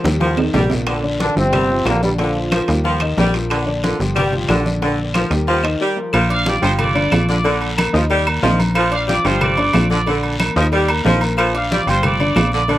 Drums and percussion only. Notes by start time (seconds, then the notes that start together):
0.04 high conga, high timbale, short guiro
0.20 high bongo, high conga, high timbale, long guiro
0.37 high bongo, low timbale, claves
0.54 high bongo, low bongo, low conga, low timbale, short guiro
0.70 high bongo, low conga, low timbale, short guiro
0.87 high bongo, high conga, high timbale, long guiro, claves
1.04 high conga
1.20 high bongo, high conga, high timbale, short guiro
1.36 high bongo, high conga, short guiro
1.53 high bongo, high conga, low conga, high timbale, long guiro, claves
1.69 high bongo, high conga
1.85 high bongo, low bongo, high conga, high timbale, low timbale, short guiro, claves
2.02 high bongo, high conga, short guiro
2.18 high bongo, high conga, high timbale, long guiro
2.35 high bongo, high conga
2.52 high bongo, high conga, high timbale, short guiro, claves
2.68 high conga, high timbale, short guiro
2.85 high bongo, high conga, long guiro
3.00 high bongo, high conga, high timbale, claves
3.17 high bongo, low bongo, high conga, low timbale, short guiro
3.34 high bongo, high timbale, short guiro
3.50 high bongo, high conga, high timbale, long guiro, claves
3.68 high conga
3.84 high bongo, high conga, high timbale, short guiro
4.00 high bongo, high conga, short guiro
4.16 high bongo, high conga, low conga, high timbale, long guiro, claves
4.33 high bongo, high conga, low conga
4.49 high bongo, low bongo, high conga, high timbale, short guiro, claves
4.66 high bongo, high conga, short guiro
4.82 high bongo, high conga, high timbale, long guiro
4.99 high bongo, high conga
5.14 high bongo, high conga, high timbale, short guiro, claves
5.31 high conga, high timbale, short guiro
5.47 high bongo, high conga, long guiro
5.64 high bongo, high conga, high timbale, claves
6.13 cowbell, high conga, low agogo, long guiro, claves
6.30 high conga, low agogo
6.46 cowbell, high conga, low timbale, short guiro
6.63 high conga, low agogo, short guiro
6.79 cowbell, high conga, low conga, low agogo, long guiro, claves
6.96 high conga, low agogo
7.12 cowbell, high conga, low timbale, low agogo, short guiro, claves
7.29 cowbell, high conga, short guiro
7.44 cowbell, high conga, low agogo, long guiro
7.61 high conga, low agogo
7.78 cowbell, high conga, low timbale, low agogo, short guiro, claves
7.95 high conga, short guiro
8.10 cowbell, high conga, low agogo, long guiro
8.27 high conga, low agogo, claves
8.43 cowbell, high conga, low timbale, short guiro
8.60 high conga, low agogo, short guiro
8.75 cowbell, high conga, low agogo, long guiro, claves
8.92 high conga, low agogo
9.08 cowbell, high conga, low timbale, short guiro
9.25 high conga, low agogo, short guiro
9.41 cowbell, high conga, low conga, low agogo, long guiro, claves
9.57 high conga, low agogo
9.73 cowbell, high conga, low timbale, low agogo, short guiro, claves
9.90 cowbell, high conga, short guiro
10.06 cowbell, high conga, low agogo, long guiro
10.23 high conga, low agogo
10.39 cowbell, high conga, low timbale, low agogo, short guiro, claves
10.56 high conga, short guiro
10.72 cowbell, high conga, low agogo, long guiro
10.88 high conga, low agogo, claves
11.05 cowbell, high conga, low timbale, short guiro
11.21 low agogo, short guiro
11.37 cowbell, high conga, low agogo, long guiro, claves
11.55 high conga, low agogo
11.70 cowbell, high conga, low timbale, short guiro
11.88 high conga, low agogo, short guiro
12.03 cowbell, high conga, low conga, low agogo, long guiro, claves
12.20 high conga, low agogo
12.35 cowbell, high conga, low timbale, low agogo, short guiro, claves
12.52 cowbell, short guiro
12.68 cowbell, high conga, low agogo, long guiro